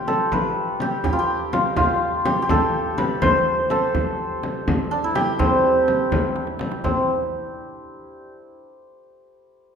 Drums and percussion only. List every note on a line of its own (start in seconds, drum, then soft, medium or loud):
0.08 frame drum medium
0.32 frame drum medium
0.80 frame drum medium
1.04 frame drum medium
1.04 tombak dum loud
1.53 tombak tek medium
1.53 frame drum medium
1.76 frame drum medium
1.76 tombak dum medium
2.26 tombak tek medium
2.26 frame drum medium
2.49 frame drum medium
2.49 tombak dum medium
2.98 tombak tek medium
2.98 frame drum medium
3.22 frame drum medium
3.22 tombak dum medium
3.70 tombak tek medium
3.70 frame drum medium
3.95 frame drum medium
3.95 tombak dum medium
4.43 tombak tek medium
4.43 frame drum medium
4.68 tombak dum medium
4.68 frame drum medium
5.15 tombak tek medium
5.15 frame drum medium
5.39 frame drum medium
5.39 tombak dum loud
5.64 tombak ka soft
5.88 tombak tek medium
5.88 frame drum medium
6.12 tombak dum medium
6.12 frame drum medium
6.24 tombak ka soft
6.36 tombak tek medium
6.47 tombak ka medium
6.59 tombak tek medium
6.59 frame drum medium
6.71 tombak ka medium
6.84 tombak dum medium
6.84 frame drum medium